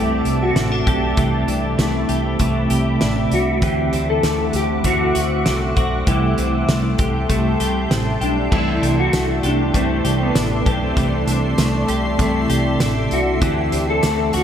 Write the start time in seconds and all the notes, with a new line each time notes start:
Already playing: C2 C3 E3 A3 C4 D4 G4 E5 A5 D6
0.25 C2, closed hi-hat
0.43 F#4
0.56 A1 C4 A4, snare, closed hi-hat
0.72 D4
0.86 B1 A3 D4 G4, kick, closed hi-hat
1.17 C2 C3 E3 A3 D4 G4 B5, kick, closed hi-hat
1.48 C2 D4, closed hi-hat
1.78 C2 E3 A3 D4 G4, snare, closed hi-hat
2.09 C2 G4, closed hi-hat
2.39 C2 C3 E3 A3 D4 G4, kick, closed hi-hat
2.70 C2 G4, closed hi-hat
3.01 A1 D4, snare, closed hi-hat
3.31 C2 A3 D4 F#4, closed hi-hat
3.60 D2 D3 E3 C4 D4 G4 C5 F#5 D6, kick, closed hi-hat
3.93 D2 C4, closed hi-hat
4.09 A4
4.23 D2 A3, snare, closed hi-hat
4.53 D2 G4, closed hi-hat
4.84 D2 D3 E3 A3 C4 D4 F#4 C5, kick, closed hi-hat
5.15 D2 F#4, closed hi-hat
5.45 C2 C4 A4, snare, closed hi-hat
5.76 B1 C4 D4 F#4, kick, closed hi-hat
6.06 C2 C3 E3 G3 A3 E4 G4 A4 G5 C6, kick, closed hi-hat
6.11 E4
6.38 C2 C4, closed hi-hat
6.68 C2 A3, snare, closed hi-hat
6.99 C2 G4, kick, closed hi-hat
7.29 C2 C3 G3 A3 E4, kick, closed hi-hat
7.60 C2 G4, closed hi-hat
7.91 A1 C4, snare, closed hi-hat
8.20 B1 G3 A3 D4 E4 G4, closed hi-hat
8.51 C2 C3 E3 A3 D4 E4 A4 D5 E5 C6, kick, crash
8.82 C2 D4, closed hi-hat
8.99 F#4
9.12 C2 C3 E3 A3 D4 E4, snare, closed hi-hat, tambourine
9.43 C2 D4 G4, closed hi-hat
9.74 C2 C3 E3 A3 C4 D4, kick, closed hi-hat
10.04 C2 G4, closed hi-hat
10.23 B3
10.35 A1 D4, snare, closed hi-hat, tambourine
10.65 B1 E3 A3 C4 D4 G4, kick, closed hi-hat
10.75 D4
10.82 C4
10.95 C2 C3 E3 A3 G4, kick, closed hi-hat
11.00 D4
11.27 C2 D4, closed hi-hat
11.58 C2 A3, snare, closed hi-hat, tambourine
11.88 C2 G4, closed hi-hat
12.18 C2 C3 E3 A3 C4, kick, closed hi-hat
12.23 D4
12.40 E4
12.49 C2 G4, closed hi-hat
12.80 A1 D4, snare, closed hi-hat, tambourine
13.11 C2 F#4, closed hi-hat
13.41 D2 D3 E3 C4 D4 G4 F#5 D6, kick, closed hi-hat
13.72 D2 C4, closed hi-hat
13.89 A4
14.02 D2 E3 A3 C4 D4 F#4, snare, closed hi-hat, tambourine
14.33 D2 F#4, closed hi-hat